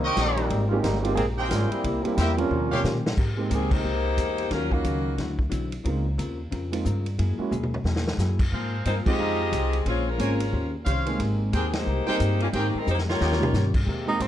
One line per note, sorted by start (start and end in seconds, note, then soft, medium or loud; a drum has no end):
0.00 0.16 C2 medium
0.00 0.36 D#3 medium
0.00 0.35 G3 medium
0.00 0.35 A#3 medium
0.00 0.35 C4 medium
0.00 0.47 G4 loud
0.00 0.47 A#4 loud
0.00 0.47 D#5 loud
0.00 0.47 C#6 loud
0.16 0.49 A#1 medium
0.16 0.38 D#3 medium
0.16 0.39 A#3 medium
0.16 0.39 C#4 medium
0.16 0.39 G4 medium
0.16 kick soft
0.16 snare medium
0.16 hi-hat pedal medium
0.16 ride medium
0.36 0.67 G3 medium
0.36 0.68 A#3 medium
0.36 0.68 C4 medium
0.36 0.67 D#4 medium
0.36 ride medium
0.50 0.83 G#1 medium
0.50 0.72 G#3 soft
0.50 0.72 C4 medium
0.50 0.73 G4 medium
0.50 0.73 A#4 medium
0.50 kick soft
0.50 ride medium
0.68 0.81 G3 medium
0.68 0.82 G#3 medium
0.68 0.80 A#3 medium
0.68 0.82 A#3 medium
0.68 0.83 C4 medium
0.68 0.82 C#4 medium
0.68 0.83 D#4 medium
0.68 0.81 F4 medium
0.68 0.83 G4 medium
0.82 1.16 G1 medium
0.82 1.02 G3 medium
0.82 1.06 G#3 medium
0.82 1.01 A#3 medium
0.82 1.01 C4 medium
0.82 1.06 C4 medium
0.82 1.02 D#4 medium
0.82 1.06 G4 medium
0.82 1.06 A#4 medium
0.82 kick soft
0.82 snare medium
0.82 hi-hat pedal medium
0.82 ride medium
1.02 1.14 D#3 medium
1.02 1.15 G#3 medium
1.02 1.14 A#3 medium
1.02 1.15 A#3 medium
1.02 1.14 C4 medium
1.02 1.15 C4 medium
1.02 1.16 D#4 medium
1.02 1.16 F4 medium
1.02 1.16 G4 medium
1.02 ride medium
1.15 1.49 A#1 medium
1.15 1.25 D#3 medium
1.15 1.39 G#3 soft
1.15 1.25 A#3 medium
1.15 1.25 C4 medium
1.15 1.39 C4 soft
1.15 1.40 G4 medium
1.15 1.25 G#4 loud
1.15 1.39 A#4 medium
1.15 kick soft
1.15 ride medium
1.37 1.49 D#3 medium
1.37 1.48 A#3 medium
1.37 1.49 C4 medium
1.37 1.49 G4 medium
1.37 1.81 G#4 medium
1.37 1.81 A#4 medium
1.37 1.81 C5 medium
1.37 1.81 G5 loud
1.49 1.70 G#1 medium
1.49 1.69 G3 medium
1.49 1.72 G#3 medium
1.49 1.69 A#3 medium
1.49 1.73 C4 medium
1.49 1.71 C#4 medium
1.49 1.70 F4 medium
1.49 1.73 G4 medium
1.49 1.73 A#4 medium
1.49 kick soft
1.49 snare medium
1.49 hi-hat pedal medium
1.49 ride medium
1.70 2.02 G3 medium
1.70 2.03 A#3 medium
1.70 2.03 C4 medium
1.70 2.04 E4 medium
1.70 ride soft
1.84 2.03 C2 medium
1.84 2.06 C3 soft
1.84 2.07 A#3 medium
1.84 2.07 E4 soft
1.84 2.07 G4 medium
1.84 kick soft
1.84 ride medium
2.04 2.17 E3 medium
2.04 2.15 G3 medium
2.04 2.16 A#3 medium
2.04 2.16 C4 medium
2.04 2.16 E4 medium
2.04 2.16 G4 medium
2.04 muted upright bass stroke soft
2.04 ride soft
2.17 2.50 E2 loud
2.17 2.40 C3 medium
2.17 2.36 G3 medium
2.17 2.36 A#3 medium
2.17 2.40 A#3 medium
2.17 2.38 C4 medium
2.17 2.38 E4 medium
2.17 2.40 E4 medium
2.17 2.31 G4 medium
2.17 2.40 G4 medium
2.17 2.31 A#4 medium
2.17 2.31 C5 medium
2.17 2.31 E5 medium
2.17 kick soft
2.17 snare medium
2.17 hi-hat pedal medium
2.17 ride medium
2.37 2.81 F3 medium
2.37 3.04 G3 medium
2.37 2.81 A#3 medium
2.37 3.05 A#3 medium
2.37 2.81 C4 medium
2.37 3.04 C#4 medium
2.37 2.82 C#4 medium
2.37 3.05 F4 medium
2.37 2.82 A#4 medium
2.37 ride soft
2.50 2.83 D#2 medium
2.50 2.73 D#3 soft
2.50 2.73 C#4 soft
2.50 2.73 G4 medium
2.50 2.74 C5 medium
2.50 mid tom soft
2.71 2.80 G4 medium
2.71 2.80 C5 medium
2.71 2.80 C#5 medium
2.71 2.80 F5 loud
2.71 mid tom medium
2.84 3.16 A#2 medium
2.84 3.06 D#3 medium
2.84 3.06 C#4 medium
2.84 3.06 G4 medium
2.84 3.07 C5 medium
2.84 snare medium
2.84 hi-hat pedal medium
3.06 snare loud
3.17 3.50 G#2 medium
3.17 3.39 G#3 medium
3.17 3.40 C4 medium
3.17 3.40 G4 medium
3.17 3.40 A#4 medium
3.17 kick medium
3.17 crash medium
3.37 3.81 G#3 medium
3.37 3.81 A#3 medium
3.37 3.81 C4 medium
3.37 3.82 D#4 medium
3.37 3.82 G4 medium
3.50 3.83 C#2 medium
3.50 3.71 D#3 medium
3.50 3.72 G#3 medium
3.50 3.71 A#3 medium
3.50 3.72 C4 medium
3.50 3.71 C4 medium
3.50 3.73 G4 medium
3.50 3.71 G#4 medium
3.50 3.73 A#4 medium
3.50 kick soft
3.50 hi-hat pedal medium
3.50 ride medium
3.71 4.52 A#3 loud
3.71 4.52 D#4 medium
3.71 4.52 G4 medium
3.71 4.52 C5 loud
3.71 kick medium
3.71 crash medium
3.84 4.17 C2 medium
3.84 4.06 G#3 soft
3.84 4.06 C4 soft
3.84 4.06 G4 soft
3.84 4.07 A#4 medium
4.17 4.50 E2 medium
4.17 4.39 G#3 medium
4.17 4.40 C4 medium
4.17 4.40 G4 medium
4.17 4.40 A#4 medium
4.17 kick soft
4.17 hi-hat pedal medium
4.17 ride medium
4.38 ride medium
4.50 4.83 D#2 medium
4.50 4.73 D#3 soft
4.50 4.73 F#3 soft
4.50 4.72 F#3 medium
4.50 4.73 C#4 medium
4.50 4.72 C#4 medium
4.50 4.72 F4 medium
4.50 4.73 F4 medium
4.50 4.72 A#4 medium
4.50 kick soft
4.50 snare soft
4.50 ride medium
4.71 5.18 C#3 medium
4.71 5.15 F#3 medium
4.71 5.15 A#3 medium
4.71 5.18 A#3 medium
4.71 5.15 C#4 medium
4.71 5.15 D#4 medium
4.71 5.18 F4 medium
4.71 5.39 F#4 medium
4.71 5.16 F5 medium
4.71 kick medium
4.84 5.17 C#2 medium
4.84 5.06 D#3 soft
4.84 5.06 F#3 medium
4.84 5.07 C#4 medium
4.84 5.07 F4 medium
4.84 kick soft
4.84 hi-hat pedal medium
4.84 ride medium
5.18 5.50 D2 medium
5.18 5.40 D3 medium
5.18 5.40 F#3 medium
5.18 5.40 C4 medium
5.18 5.40 E4 medium
5.18 kick soft
5.18 snare soft
5.18 ride medium
5.39 kick medium
5.49 5.84 B1 medium
5.49 5.72 D3 medium
5.49 5.73 F#3 medium
5.49 5.73 C4 medium
5.49 5.73 E4 medium
5.49 kick soft
5.49 hi-hat pedal soft
5.49 ride medium
5.72 ride soft
5.84 6.17 C#2 medium
5.84 6.06 C#3 medium
5.84 6.04 G#3 soft
5.84 6.04 A#3 soft
5.84 6.07 C4 medium
5.84 6.04 C4 soft
5.84 6.04 D#4 soft
5.84 6.07 F4 medium
5.84 6.04 F4 medium
5.84 6.07 A#4 medium
5.84 kick soft
5.84 ride medium
6.18 6.51 D#2 medium
6.18 6.40 C#3 medium
6.18 6.40 C4 medium
6.18 6.40 F4 medium
6.18 6.40 A#4 medium
6.18 kick soft
6.18 hi-hat pedal soft
6.18 ride medium
6.51 6.84 F2 medium
6.51 6.73 C#3 medium
6.51 6.74 C4 medium
6.51 6.74 F4 medium
6.51 6.74 A#4 medium
6.51 kick soft
6.51 ride medium
6.71 6.83 G#3 medium
6.71 6.83 A#3 medium
6.71 6.84 C4 medium
6.71 6.84 D#4 medium
6.71 6.84 F4 medium
6.71 ride medium
6.85 7.18 G2 medium
6.85 7.07 C#3 medium
6.85 7.07 C4 medium
6.85 7.07 F4 medium
6.85 7.07 A#4 medium
6.85 kick soft
6.85 hi-hat pedal medium
7.06 ride medium
7.18 7.38 F#2 medium
7.18 7.40 F#3 medium
7.18 7.40 A#3 medium
7.18 7.41 E4 medium
7.18 7.41 G#4 medium
7.18 kick soft
7.18 ride medium
7.38 7.50 G#3 medium
7.38 7.50 A#3 medium
7.38 7.50 C#4 medium
7.38 7.51 E4 medium
7.38 7.51 F#4 medium
7.38 muted upright bass stroke soft
7.51 7.84 D#2 medium
7.51 7.73 F#3 medium
7.51 7.73 A#3 medium
7.51 7.74 E4 medium
7.51 7.74 G#4 medium
7.51 hi-hat pedal soft
7.51 mid tom soft
7.63 mid tom medium
7.74 mid tom medium
7.84 8.17 E2 medium
7.84 8.07 F#3 soft
7.84 8.07 A#3 medium
7.84 8.08 E4 medium
7.84 8.08 G#4 medium
7.84 snare medium
7.96 snare medium
8.07 snare loud
8.18 8.51 F#2 medium
8.18 8.41 F#3 medium
8.18 8.41 A#3 medium
8.18 8.41 E4 medium
8.18 8.41 G#4 medium
8.18 snare medium
8.18 hi-hat pedal medium
8.39 kick medium
8.39 crash medium
8.52 8.84 G#2 medium
8.52 8.74 G#2 medium
8.52 8.75 F3 medium
8.52 8.75 A#3 medium
8.52 8.75 C4 medium
8.52 9.02 G#4 medium
8.52 9.02 A#4 medium
8.52 9.02 C5 medium
8.52 9.02 F5 medium
8.52 kick soft
8.85 9.05 G2 medium
8.85 9.07 G#2 soft
8.85 9.08 F3 medium
8.85 8.95 A#3 medium
8.85 9.08 A#3 medium
8.85 9.08 C4 medium
8.85 8.95 D#4 medium
8.85 8.95 F4 medium
8.85 8.95 C5 medium
8.85 kick soft
8.85 hi-hat pedal medium
8.85 ride medium
9.05 9.49 F3 medium
9.05 9.49 G#3 medium
9.05 9.50 C4 medium
9.05 9.82 C4 medium
9.05 9.50 D#4 medium
9.05 9.50 F4 medium
9.05 9.82 G4 medium
9.05 9.82 G#4 medium
9.05 9.82 D#5 loud
9.05 muted upright bass stroke soft
9.05 kick medium
9.05 crash medium
9.18 9.51 F2 medium
9.18 9.41 F3 soft
9.18 9.41 G#3 medium
9.18 9.41 D#4 medium
9.18 9.69 F4 medium
9.18 9.41 G4 medium
9.18 9.69 D#5 medium
9.18 9.69 F5 medium
9.18 9.69 A#5 medium
9.51 9.85 C2 medium
9.51 9.74 F3 medium
9.51 9.74 G#3 medium
9.51 9.74 D#4 medium
9.51 9.74 G4 medium
9.51 kick soft
9.51 hi-hat pedal medium
9.51 ride medium
9.73 ride medium
9.85 10.18 A#1 medium
9.85 10.06 G#3 medium
9.85 10.07 A#3 soft
9.85 10.06 C4 medium
9.85 10.08 C#4 soft
9.85 10.06 F4 medium
9.85 10.08 G#4 medium
9.85 10.08 C5 medium
9.85 10.06 C#5 medium
9.85 kick soft
9.85 ride medium
10.08 10.54 G#3 medium
10.08 10.74 C#4 medium
10.08 10.74 F4 medium
10.08 10.74 A#4 medium
10.18 10.52 G#1 medium
10.18 10.37 G#3 soft
10.18 10.40 A#3 medium
10.18 10.38 A#3 soft
10.18 10.38 C4 soft
10.18 10.41 C#4 medium
10.18 10.38 C#4 medium
10.18 10.38 F4 medium
10.18 10.41 G#4 medium
10.18 10.33 A#4 medium
10.18 10.33 C5 medium
10.18 10.41 C5 medium
10.18 10.33 C#5 medium
10.18 10.33 G#5 medium
10.18 kick soft
10.18 hi-hat pedal medium
10.18 ride medium
10.40 ride medium
10.52 10.85 D#2 medium
10.52 10.74 D#3 medium
10.52 10.75 C#4 medium
10.52 10.75 G4 medium
10.52 10.75 C5 medium
10.52 kick soft
10.85 11.18 C2 medium
10.85 11.08 D#3 medium
10.85 11.08 C#4 medium
10.85 11.08 G4 medium
10.85 11.19 C5 medium
10.85 11.09 C5 medium
10.85 11.19 C#5 medium
10.85 11.19 F5 loud
10.85 kick soft
10.85 hi-hat pedal medium
10.85 ride medium
11.06 11.50 G#3 medium
11.06 11.50 A#3 medium
11.06 11.50 C4 medium
11.06 11.50 D#4 medium
11.06 11.51 G#4 medium
11.06 ride medium
11.18 11.52 G#1 medium
11.18 11.41 G#3 medium
11.18 11.41 C4 medium
11.18 11.41 G4 medium
11.18 11.42 A#4 medium
11.18 kick soft
11.18 ride medium
11.52 11.85 D#2 loud
11.52 11.73 D#3 medium
11.52 11.74 G#3 medium
11.52 11.73 A#3 medium
11.52 11.75 C4 medium
11.52 11.74 C4 medium
11.52 11.75 G4 medium
11.52 11.67 G#4 medium
11.52 11.73 G#4 medium
11.52 11.67 A#4 medium
11.52 11.75 A#4 medium
11.52 11.66 C5 medium
11.52 11.67 G5 loud
11.52 kick soft
11.52 hi-hat pedal soft
11.52 ride medium
11.73 12.08 A#3 medium
11.73 12.08 D#4 medium
11.73 12.08 G4 medium
11.73 12.08 C5 medium
11.73 snare medium
11.73 ride medium
11.86 12.06 C2 medium
11.86 12.08 G#3 soft
11.86 12.08 C4 soft
11.86 12.08 G4 medium
11.86 12.09 A#4 medium
12.06 12.50 G3 medium
12.06 12.50 A#3 medium
12.06 12.39 A#3 medium
12.06 12.50 C4 medium
12.06 12.50 D#4 medium
12.06 12.39 D#4 medium
12.06 12.51 G4 medium
12.06 12.39 G4 medium
12.06 12.16 G#4 loud
12.06 12.15 A#4 medium
12.06 12.15 C5 medium
12.06 12.39 C5 medium
12.06 12.15 G5 loud
12.06 muted upright bass stroke soft
12.20 12.52 G2 medium
12.20 12.42 G#3 medium
12.20 12.42 C4 medium
12.20 12.42 G4 medium
12.20 12.42 A#4 medium
12.20 kick soft
12.20 hi-hat pedal medium
12.20 ride medium
12.40 12.47 G3 medium
12.40 12.48 A#3 medium
12.40 12.48 C#4 medium
12.40 12.47 F4 medium
12.40 ride soft
12.53 12.72 G#2 medium
12.53 12.75 D#3 medium
12.53 12.75 G#3 soft
12.53 12.72 G#3 soft
12.53 12.72 A#3 soft
12.53 12.75 A#3 medium
12.53 12.75 C4 medium
12.53 12.72 C4 soft
12.53 12.75 C4 medium
12.53 12.72 D#4 soft
12.53 12.72 G4 medium
12.53 12.76 G4 soft
12.53 12.75 G4 medium
12.53 12.67 G#4 medium
12.53 12.67 A#4 medium
12.53 12.76 A#4 medium
12.53 12.67 C5 medium
12.53 12.67 G5 loud
12.53 kick soft
12.53 ride medium
12.75 12.88 G3 medium
12.75 12.88 C4 medium
12.75 12.88 D#4 medium
12.75 12.88 A#4 loud
12.75 muted upright bass stroke soft
12.86 13.19 F2 loud
12.86 13.08 G#3 soft
12.86 12.98 A#3 medium
12.86 13.09 C4 medium
12.86 12.98 D#4 medium
12.86 13.09 G4 medium
12.86 12.98 G4 medium
12.86 13.09 A#4 medium
12.86 12.98 C5 loud
12.86 hi-hat pedal medium
12.98 snare medium
13.10 13.71 A#3 medium
13.10 13.71 F4 medium
13.10 13.71 G4 medium
13.10 13.71 C#5 loud
13.10 snare medium
13.20 13.52 D#2 medium
13.20 13.42 D#3 soft
13.20 13.42 G3 soft
13.20 13.43 C#4 soft
13.20 13.43 F4 soft
13.20 13.34 G4 medium
13.20 13.34 C#5 medium
13.20 13.34 D#5 medium
13.20 13.34 G5 medium
13.20 snare medium
13.32 snare medium
13.40 13.52 F3 medium
13.40 13.52 A#3 medium
13.40 13.52 C#4 medium
13.40 13.52 D#4 medium
13.40 13.53 G4 medium
13.40 mid tom loud
13.53 13.86 G2 medium
13.53 13.75 D#3 medium
13.53 13.76 G3 medium
13.53 13.76 C#4 medium
13.53 13.76 F4 medium
13.53 snare medium
13.53 hi-hat pedal medium
13.74 kick medium
13.74 crash medium
13.85 14.19 D#2 medium
13.85 14.28 C3 medium
13.85 14.28 G#3 medium
13.85 14.09 G#3 medium
13.85 14.28 A#3 medium
13.85 14.09 C4 medium
13.85 14.28 G4 medium
13.85 14.09 G4 medium
13.85 14.10 A#4 medium
13.85 kick soft
14.06 14.18 G#3 medium
14.06 14.19 A#3 medium
14.06 14.19 C4 medium
14.06 14.19 D#4 medium
14.06 14.24 D#4 medium
14.06 14.19 G4 medium
14.19 14.28 G#1 medium
14.19 14.28 G#3 medium
14.19 14.28 C4 soft
14.19 14.28 C4 medium
14.19 14.28 G4 medium
14.19 14.28 A#4 medium
14.19 kick soft
14.19 hi-hat pedal soft
14.19 ride medium